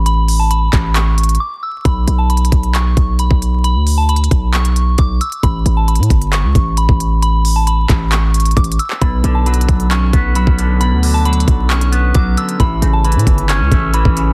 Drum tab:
HH |x-----------o-----------x-----------x-----------x-----------x--x--x--x--------------------------|x-----------x-----------x---x---x---x-----x-----x-----------x-----------x-----------x-----------|x-----------o-----------x---x---x---x-----------x-----x-----x-----------x-----------x-----x-----|x-----------x-----------x---x---x---x-----x-----x-----------x-----------x-----------x-----------|
CP |------------------------------------x-----------x-----------------------------------------------|------------------------------------------------x-----------------------------------------------|------------------------------------------------x-----------------------------------------------|------------------------------------------------x-----------------------------------------------|
BD |------------------------------------o-----------------------------------------------------------|o-----------------------------------o-----------------------o-----------------o-----------------|------------------------------------o-----------------------------------o-----------------------|o-----------------------------------o-----------------------o-----------------o-----------------|

HH |x-----------o-----------x-----------x-----------x-----------x--x--x--x--x---x---x---x-----------|x-----------x-----------x---x---x---x-----x-----x-----------x-----------x-----------x-----------|x-----------o-----------x---x---x---x-----------x-----x-----x-----------x-----------x-----x-----|x-----------x-----------x---x---x---x-----x-----x-----------x-----------x-----------x-----------|
CP |------------------------------------x-----------x-----------------------------------------x-----|------------------------------------------------x-----------------------------------------------|------------------------------------------------x-----------------------------------------------|------------------------------------------------x-----------------------------------------------|
BD |------------------------------------o-----------------------------------o-----------------------|o-----------------------------------o-----------------------o-----------------o-----------------|------------------------------------o-----------------------------------o-----------------------|o-----------------------------------o-----------------------o-----------------o-----------------|